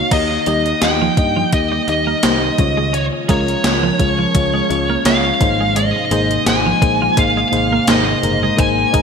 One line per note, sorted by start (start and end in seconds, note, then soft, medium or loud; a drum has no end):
0.00 0.12 A#3 medium
0.00 0.12 D#4 medium
0.00 0.14 F#4 medium
0.00 0.14 C#5 loud
0.00 0.14 F5 medium
0.11 0.37 D#2 loud
0.11 2.56 D#3 medium
0.11 1.14 D#3 medium
0.11 2.56 G3 medium
0.11 2.56 A#3 medium
0.11 0.38 A#3 medium
0.11 0.28 D#4 medium
0.11 0.38 D#4 medium
0.11 0.38 G4 medium
0.11 0.84 D#5 medium
0.11 0.39 D#5 medium
0.11 kick loud
0.11 closed hi-hat medium
0.11 crash medium
0.31 muted clean electric guitar stroke soft
0.46 0.72 D#2 medium
0.46 0.63 G3 medium
0.46 0.73 A#3 medium
0.46 0.73 D#4 medium
0.46 0.73 G4 medium
0.46 0.74 D#5 loud
0.46 closed hi-hat medium
0.66 closed hi-hat medium
0.82 1.08 D#2 loud
0.82 1.08 A#3 medium
0.82 1.09 D#4 medium
0.82 1.09 G4 medium
0.82 1.09 D#5 medium
0.82 1.49 G5 medium
0.82 snare loud
0.82 closed hi-hat medium
1.02 1.15 F3 medium
1.17 1.43 G2 medium
1.17 1.44 A#3 medium
1.17 1.44 D#4 medium
1.17 1.44 G4 medium
1.17 1.44 D#5 medium
1.17 muted clean electric guitar stroke soft
1.17 kick loud
1.17 closed hi-hat medium
1.37 1.50 F3 medium
1.53 1.78 D#2 medium
1.53 1.79 A#3 medium
1.53 1.79 D#4 medium
1.53 1.79 G4 medium
1.53 1.88 D#5 medium
1.53 1.79 D#5 medium
1.53 kick medium
1.53 closed hi-hat medium
1.72 1.85 G3 medium
1.87 2.13 D#2 medium
1.87 2.14 A#3 medium
1.87 2.15 D#4 medium
1.87 2.15 G4 medium
1.87 2.15 D#5 medium
1.87 2.94 D#5 medium
1.87 muted clean electric guitar stroke soft
1.87 closed hi-hat medium
2.07 2.20 A#3 medium
2.23 2.49 C2 medium
2.23 2.39 A#3 medium
2.23 2.49 A#3 medium
2.23 2.50 D#4 medium
2.23 2.50 G4 medium
2.23 2.50 C5 loud
2.23 snare loud
2.23 closed hi-hat medium
2.42 muted clean electric guitar stroke soft
2.58 3.09 C#2 medium
2.58 3.61 C#3 medium
2.58 5.38 F3 medium
2.58 3.16 G#3 medium
2.58 9.02 G#3 medium
2.58 3.16 C#4 medium
2.58 5.39 C#4 medium
2.58 3.17 F4 medium
2.58 3.17 C#5 medium
2.58 kick loud
2.58 closed hi-hat medium
2.77 2.91 G#3 medium
2.93 3.10 C#4 medium
2.93 3.04 C#5 medium
2.93 closed hi-hat medium
3.13 muted clean electric guitar stroke soft
3.29 3.55 C#2 loud
3.29 3.45 G#3 medium
3.29 3.55 G#3 medium
3.29 3.55 C#4 medium
3.29 3.56 F4 medium
3.29 3.56 A#4 loud
3.29 5.05 C#5 medium
3.29 kick medium
3.29 closed hi-hat medium
3.48 closed hi-hat medium
3.64 3.90 C#2 loud
3.64 3.90 G#3 medium
3.64 3.91 C#4 medium
3.64 3.91 F4 medium
3.64 3.91 C#5 medium
3.64 snare loud
3.64 closed hi-hat medium
3.83 3.97 F3 medium
3.99 4.25 C#2 medium
3.99 4.25 G#3 medium
3.99 4.26 C#4 medium
3.99 4.26 F4 medium
3.99 4.26 C#5 medium
3.99 muted clean electric guitar stroke soft
3.99 kick medium
3.99 closed hi-hat medium
4.19 4.32 F3 medium
4.34 4.60 C#2 loud
4.34 4.61 G#3 medium
4.34 4.61 C#4 medium
4.34 4.61 F4 medium
4.34 4.61 C#5 medium
4.34 kick medium
4.34 closed hi-hat medium
4.54 4.67 G#3 medium
4.69 4.96 C#2 loud
4.69 4.96 G#3 medium
4.69 4.96 C#4 medium
4.69 4.96 F4 medium
4.69 4.97 C#5 medium
4.69 muted clean electric guitar stroke soft
4.69 closed hi-hat medium
4.90 5.03 A#3 medium
5.05 5.31 C#2 loud
5.05 5.32 G#3 medium
5.05 5.22 A#3 medium
5.05 5.32 C#4 medium
5.05 5.32 F4 medium
5.05 5.32 C#5 loud
5.05 5.77 F5 loud
5.05 snare loud
5.05 closed hi-hat medium
5.25 muted clean electric guitar stroke soft
5.40 5.92 G#1 loud
5.40 6.43 G#2 medium
5.40 9.02 C3 medium
5.40 5.98 A#3 medium
5.40 9.02 A#3 medium
5.40 5.99 D#4 medium
5.40 5.99 G#4 medium
5.40 5.99 C5 medium
5.40 kick loud
5.40 closed hi-hat medium
5.61 5.74 G#3 medium
5.76 5.92 G#3 medium
5.76 6.43 D#5 loud
5.76 closed hi-hat medium
5.96 muted clean electric guitar stroke soft
6.11 6.37 G#1 loud
6.11 6.28 G#3 medium
6.11 6.38 A#3 medium
6.11 6.38 D#4 medium
6.11 6.38 G#4 medium
6.11 6.38 C5 loud
6.11 closed hi-hat medium
6.31 closed hi-hat medium
6.46 6.72 G#1 loud
6.46 6.73 A#3 medium
6.46 6.73 D#4 medium
6.46 6.73 G#4 medium
6.46 6.74 C5 medium
6.46 7.20 G#5 loud
6.46 snare loud
6.46 closed hi-hat medium
6.66 6.79 F3 medium
6.82 7.07 A#1 medium
6.82 7.08 A#3 medium
6.82 7.08 D#4 medium
6.82 7.09 G#4 medium
6.82 7.09 C5 medium
6.82 muted clean electric guitar stroke soft
6.82 kick loud
6.82 closed hi-hat medium
7.02 7.15 F3 medium
7.17 7.43 G#1 loud
7.17 7.43 A#3 medium
7.17 7.43 D#4 medium
7.17 7.43 G#4 medium
7.17 7.44 C5 medium
7.17 7.89 F5 loud
7.17 kick medium
7.17 closed hi-hat medium
7.37 7.50 G#3 medium
7.52 7.78 G#1 loud
7.52 7.78 A#3 medium
7.52 7.79 D#4 medium
7.52 7.79 G#4 medium
7.52 7.79 C5 medium
7.52 muted clean electric guitar stroke soft
7.52 closed hi-hat medium
7.72 7.85 A#3 medium
7.87 8.13 G#1 medium
7.87 8.14 A#3 medium
7.87 8.04 A#3 medium
7.87 8.14 D#4 medium
7.87 8.14 G#4 medium
7.87 8.14 C5 loud
7.87 8.55 D#5 medium
7.87 snare loud
7.87 closed hi-hat loud
8.08 muted clean electric guitar stroke soft
8.22 8.49 F#1 medium
8.22 9.02 G#2 medium
8.22 8.49 A#3 medium
8.22 8.49 D#4 medium
8.22 8.50 G#4 medium
8.22 8.50 A#4 medium
8.22 closed hi-hat medium
8.43 8.56 G#3 medium
8.57 8.84 G#1 loud
8.57 8.75 G#3 medium
8.57 8.84 A#3 medium
8.57 8.84 D#4 medium
8.57 8.84 G#4 medium
8.57 8.85 C5 loud
8.57 9.02 G#5 loud
8.57 kick loud
8.57 closed hi-hat medium
8.78 muted clean electric guitar stroke soft
8.93 9.02 G#1 loud
8.93 9.02 G#3 medium
8.93 9.02 A#3 loud
8.93 9.02 D#4 medium
8.93 9.02 G#4 medium
8.93 9.02 A#4 loud
8.93 kick medium
8.93 closed hi-hat medium